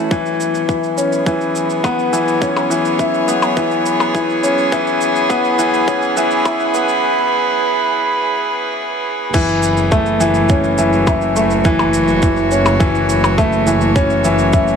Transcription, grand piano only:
Already playing: E3 A3 C#4 E4
0.11 E3
0.68 E3
0.97 C#4
1.26 E3
1.84 B3
2.13 E3
2.42 C#4
2.70 E3
2.99 E4
3.28 B3
3.57 E3
4.14 E3
4.43 C#4
4.72 E3
5.30 B3
5.59 E3
5.88 C#4
6.17 E3
6.45 E4
6.74 B3
9.34 E3
9.92 A3
10.20 E3
10.50 C#4
10.78 E3
11.07 E4
11.36 A3
11.65 E3
12.23 E3
12.52 C#4
12.80 E3
13.38 A3
13.67 E3
13.96 C#4
14.25 E3
14.53 E4

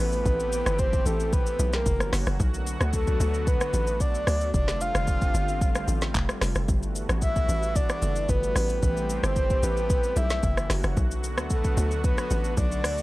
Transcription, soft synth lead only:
Already playing: B4
0.25 B4
0.79 C5
1.06 A4
1.33 B4
1.74 A#4
2.94 A4
3.47 B4
4.01 D5
4.54 D5
4.81 F5
7.22 E5
7.76 D5
8.29 B4
8.83 B4
9.24 C5
9.64 B4
10.17 E5
11.51 A4
12.05 B4
12.58 D5

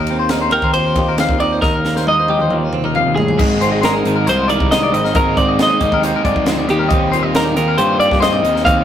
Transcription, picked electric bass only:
Already playing: D#2
0.62 D#2
0.96 D#2
1.29 D#2
1.63 D#2
2.39 D#2
2.50 D#2
3.06 D#2
3.39 G#1
4.05 G#1
4.28 C2
4.60 C2
4.93 G#1
5.15 G#1
5.37 G#1
5.81 G#1
5.92 D#2
6.25 G#2
6.35 D2
6.69 D#2
7.56 D#2
7.78 G2
8.11 G2
8.43 D#2
8.66 D#2

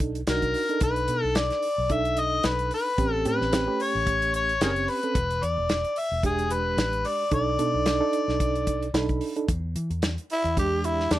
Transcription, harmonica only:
0.30 A#4
0.83 B4
1.22 A4
1.37 D5
1.92 E5
2.20 D#5
2.46 B4
2.74 B4
3.28 B4
3.81 C#5
4.35 C#5
4.63 G#4 A#4 C#5
4.89 B4
5.44 D5
5.98 E5
6.25 G#4
6.53 B4
7.07 D5
7.34 D5

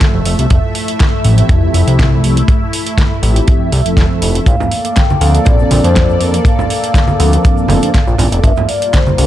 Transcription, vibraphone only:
4.47 F5
5.21 F5
5.45 D5
5.84 C5
6.20 A#4
6.46 F5
8.44 E5
8.69 D5
8.93 C5

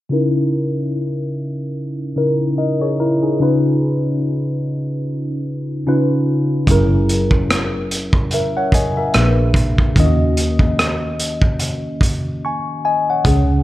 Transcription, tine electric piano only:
0.09 C#3 C#4 D#4 E4 A#4
2.16 C#3 C#4 D#4 E4 A#4
2.58 A#4 D#5
2.81 G#4 C#5
3.00 E4 A#4
3.23 D#4 G#4
3.40 C#3 C#4 D#4 F4 B4
5.87 C#3 C#4 D#4 F4 B4
6.67 F#3 C#4 E4 G#4 A#4
8.34 A#4 E5
8.57 C#5 F#5
8.74 D#5 G#5
8.97 A#4 E5
9.15 A#2 A#3 D4 G#4 B4
9.96 D#3 A#3 C#4 E4 D#5
10.05 F#4
12.45 G#5 C#6
12.85 D#5 G#5
13.10 C#5 F#5
13.26 C#4 G#4

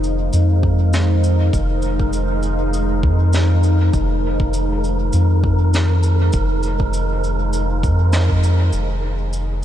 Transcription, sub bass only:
Already playing: F1
0.33 F2
1.53 F1
3.03 F2
3.94 F1
5.13 F2
6.34 F1
7.84 F2
8.73 F1

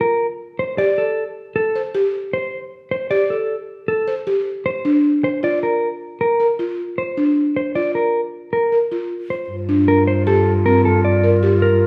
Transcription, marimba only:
0.78 G4
1.76 C5
1.95 G4
3.11 G4
4.08 C5
4.27 G4
4.85 D4
5.43 F4
6.40 A#4
6.59 F4
7.17 D4
7.75 F4
8.72 A#4
8.92 F4
9.69 D4
10.27 G4
10.66 C4
11.24 A#4
11.43 G4

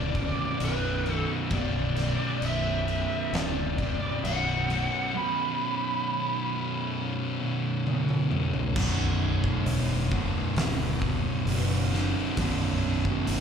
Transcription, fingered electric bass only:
Already playing: D1
0.60 B0
1.51 B0
2.41 B0
3.33 D1
4.24 B0
8.76 B0
9.66 E1
10.56 D1
11.45 F#1
12.37 B0
13.28 F#1

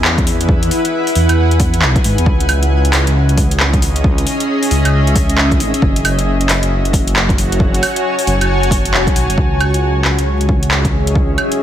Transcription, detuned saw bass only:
Already playing: E2
1.15 E2
1.29 E2
1.38 E2
1.82 B1
2.05 G#2
2.18 E2
2.26 C#2
2.94 C#2
3.07 C#2
3.38 C#2
4.71 C#2
4.85 C#2
4.93 C#2
5.60 G#1
5.82 F#1
6.49 F#1
6.63 F#1
6.93 F#1
8.27 F#1
8.41 F#1
8.49 F#1
8.94 E1
9.16 B1
9.29 F#1
9.38 C#2
10.05 C#2
10.18 C#2
10.49 C#2

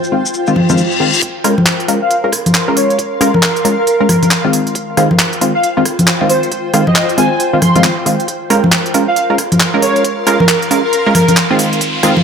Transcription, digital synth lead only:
2.02 F5
2.77 C#5
3.34 A#4
3.43 A#4
3.78 A#4
3.87 A#4
4.09 A#4
4.22 A#4
5.55 F5
6.29 C5
6.87 D#5
6.96 D#5
7.18 G#5
7.31 G#5
7.62 C6
7.76 C6
9.08 F5
9.82 C#5
10.40 A#4
10.49 A#4
10.84 A#4
10.93 A#4
11.15 A#4
11.28 A#4

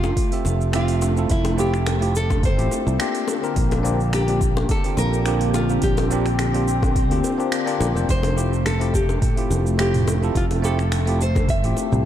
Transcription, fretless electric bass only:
Already playing: F1
0.45 F1
1.30 F1
2.58 A1
2.87 C2
3.56 A#1
4.97 A#1
5.82 A#1
7.11 D2
7.80 A#1
7.95 F1
8.09 F1
9.50 F1
10.35 F1
11.64 A1
11.92 C2

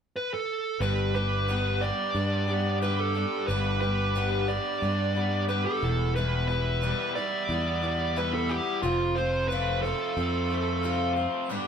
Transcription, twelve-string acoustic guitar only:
0.81 G2 D3 G3 B3 D4 G4
1.14 G3 B3 D4 G4
1.48 G2 D3 G3 B3 D4 G4
1.82 G3 B3 D4 G4
2.15 G3 B3 D4 G4
2.48 G3 B3 D4 G4
2.82 G2 D3 G3 B3 D4 G4
3.15 G3 B3 D4 G4
3.48 G2 D3 G3 B3 D4 G4
3.81 G3 B3 D4 G4
4.15 G2 D3 G3 B3 D4 G4
4.48 G3 B3 D4 G4
4.81 G3 B3 D4 G4
5.15 G3 B3 D4 G4
5.48 G2 D3 G3 B3 D4 G4
5.82 E3 G3 B3 E4
6.16 E2 B2 E3 G3 B3 E4
6.48 E3 G3 B3 E4
6.82 E2 B2 E3 G3 B3 E4
7.16 E3 G3 B3 E4
7.49 E3 G3 B3 E4
7.82 E3 G3 B3 E4
8.16 E2 B2 E3 G3 B3 E4
8.48 E3 G3 B3 E4
8.82 F2 C3 F3 A3 C4 F4
9.17 F3 A3 C4 F4
9.50 F2 C3 F3 A3 C4 F4
9.84 F3 A3 C4 F4
10.17 F3 A3 C4 F4
10.50 F3 A3 C4 F4
10.83 F2 C3 F3 A3 C4 F4
11.16 F3 A3 C4 F4
11.49 G2 D3 G3 B3 D4 G4

